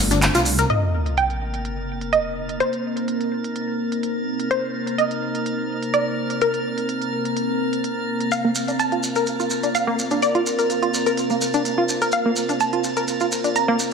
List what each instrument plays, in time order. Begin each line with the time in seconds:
Already playing: ambient pad C3 A3 C4 D4 F4, synth pluck C6
0.00 detuned saw bass G1
0.10 synth arpeggio sound D4, snare, closed hi-hat, maracas
0.22 snare, clap, closed hi-hat, maracas
0.34 detuned saw bass C2, synth arpeggio sound F4, snare, closed hi-hat, maracas
0.45 closed hi-hat, open hi-hat, maracas
0.58 synth arpeggio sound A#4, snare, closed hi-hat, maracas
0.70 ambient pad C3 A#3 C4 D#4 A#4, synth texture A#4 A6, synth pluck D#5, closed hi-hat, sub drop
1.06 closed hi-hat
1.17 synth pluck G5, closed hi-hat
1.30 closed hi-hat
1.54 closed hi-hat
1.65 closed hi-hat
2.01 closed hi-hat
2.13 synth pluck D#5, closed hi-hat
2.49 closed hi-hat
2.60 synth pluck C5, closed hi-hat
2.73 closed hi-hat
2.97 closed hi-hat
3.08 closed hi-hat
3.21 closed hi-hat
3.44 closed hi-hat
3.56 closed hi-hat
3.92 closed hi-hat
4.03 closed hi-hat
4.40 closed hi-hat
4.51 synth pluck C5, closed hi-hat
4.87 closed hi-hat
4.98 synth pluck D#5, closed hi-hat
5.11 closed hi-hat
5.35 closed hi-hat
5.46 closed hi-hat
5.83 closed hi-hat
5.94 synth pluck D5, closed hi-hat
6.30 closed hi-hat
6.41 synth pluck A#4, closed hi-hat
6.54 closed hi-hat
6.78 closed hi-hat
6.89 closed hi-hat
7.02 closed hi-hat
7.25 closed hi-hat
7.37 closed hi-hat
7.73 closed hi-hat
7.84 closed hi-hat
8.21 closed hi-hat
8.32 ambient pad F4 A#4, synth pluck F5, closed hi-hat, maracas
8.44 synth arpeggio sound A#3
8.55 maracas
8.68 synth arpeggio sound D4, closed hi-hat, maracas
8.79 synth pluck A5, closed hi-hat, maracas
8.92 synth arpeggio sound F4, closed hi-hat
9.03 maracas
9.16 synth arpeggio sound A#4, closed hi-hat, maracas
9.26 closed hi-hat, maracas
9.40 synth arpeggio sound F4, maracas
9.50 maracas
9.63 synth arpeggio sound D4, closed hi-hat, maracas
9.75 synth pluck F5, closed hi-hat, maracas
9.87 synth arpeggio sound A#3
9.99 maracas
10.11 synth arpeggio sound D4, closed hi-hat, maracas
10.22 synth pluck D5, closed hi-hat, maracas
10.35 synth arpeggio sound F4, closed hi-hat
10.46 maracas
10.59 synth arpeggio sound A#4, closed hi-hat, maracas
10.70 closed hi-hat, maracas
10.82 synth arpeggio sound F4, closed hi-hat
10.94 maracas
11.06 synth arpeggio sound A#4, closed hi-hat, maracas
11.17 closed hi-hat, maracas
11.30 synth arpeggio sound A#3, maracas
11.41 maracas
11.54 synth arpeggio sound D4, closed hi-hat, maracas
11.65 closed hi-hat, maracas
11.78 synth arpeggio sound F4
11.89 maracas
12.02 synth arpeggio sound A#4, closed hi-hat, maracas
12.12 synth pluck F5, closed hi-hat, maracas
12.25 synth arpeggio sound A#3
12.36 maracas
12.49 synth arpeggio sound D4, closed hi-hat, maracas
12.60 synth pluck A5, closed hi-hat, maracas
12.73 synth arpeggio sound F4, closed hi-hat
12.84 maracas
12.97 synth arpeggio sound A#4, closed hi-hat, maracas
13.08 closed hi-hat, maracas
13.20 synth arpeggio sound F4, maracas
13.32 maracas
13.44 synth arpeggio sound D4, closed hi-hat, maracas
13.56 synth pluck A#5, closed hi-hat, maracas
13.68 synth arpeggio sound A#3
13.79 maracas